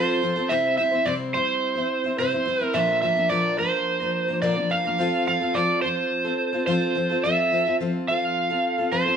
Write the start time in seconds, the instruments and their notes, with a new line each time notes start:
Already playing: steel-string acoustic guitar F3 C4 F4 A4, electric slide guitar C5
0.22 steel-string acoustic guitar F3 C4 F4 A4
0.36 steel-string acoustic guitar C4 F4 A4
0.49 steel-string acoustic guitar C3 G3 C4 E4 C5, electric slide guitar E5
0.77 steel-string acoustic guitar G3 C4 E4 C5, electric slide guitar E5
0.91 steel-string acoustic guitar C4 E4 C5
1.05 steel-string acoustic guitar C3 G3 C4 E4 C5, electric slide guitar D5
1.34 steel-string acoustic guitar G3 C4 E4 C5, electric slide guitar C5
1.76 steel-string acoustic guitar C4 E4 C5
2.04 steel-string acoustic guitar C4 E4 C5
2.18 steel-string acoustic guitar C3 G3 C4 E4 C5, electric slide guitar C5
2.33 steel-string acoustic guitar C4 E4 C5
2.45 steel-string acoustic guitar G3 C4 E4 C5
2.59 steel-string acoustic guitar C4 E4 C5
2.64 electric slide guitar A#4
2.74 steel-string acoustic guitar A#2 D3 F3 A#3 D4 A#4, electric slide guitar E5
3.02 steel-string acoustic guitar F3 A#3 D4 A#4, electric slide guitar E5
3.15 steel-string acoustic guitar F3 A#3 D4 A#4
3.29 steel-string acoustic guitar A#2 D3 F3 A#3 D4 A#4, electric slide guitar D5
3.58 steel-string acoustic guitar F3 A#3 D4 A#4, electric slide guitar C5
4.00 steel-string acoustic guitar F3 A#3 D4 A#4
4.28 steel-string acoustic guitar F3 A#3 D4 A#4
4.42 steel-string acoustic guitar A#2 D3 F3 A#3 D4 A#4, electric slide guitar D5
4.56 steel-string acoustic guitar F3 A#3 D4 A#4
4.70 steel-string acoustic guitar F3 A#3 D4 A#4, electric slide guitar F5
4.84 steel-string acoustic guitar F3 A#3 D4 A#4
4.98 steel-string acoustic guitar F3 C4 F4 A4
5.26 steel-string acoustic guitar F3 C4 F4 A4, electric slide guitar F5
5.40 steel-string acoustic guitar C4 F4 A4
5.54 steel-string acoustic guitar F3 C4 F4 A4, electric slide guitar D5
5.82 steel-string acoustic guitar F3 C4 F4, electric slide guitar C5
5.86 steel-string acoustic guitar A4
6.25 steel-string acoustic guitar C4 F4 A4
6.53 steel-string acoustic guitar C4 F4 A4
6.67 steel-string acoustic guitar F3 C4 F4 A4, electric slide guitar C5
6.95 steel-string acoustic guitar F3 C4 F4 A4
7.09 steel-string acoustic guitar C4 F4 A4
7.24 steel-string acoustic guitar F3 C4 F4 A4, electric slide guitar E5
7.52 steel-string acoustic guitar F3 C4 F4 A4
7.66 steel-string acoustic guitar C4 F4 A4
7.80 steel-string acoustic guitar F3 C4 F4 A4
8.08 steel-string acoustic guitar F3 C4 F4 A4, electric slide guitar F5
8.50 steel-string acoustic guitar C4 F4 A4
8.78 steel-string acoustic guitar C4 F4 A4
8.92 steel-string acoustic guitar F3 C4 F4 A4, electric slide guitar C5
9.05 steel-string acoustic guitar C4 F4 A4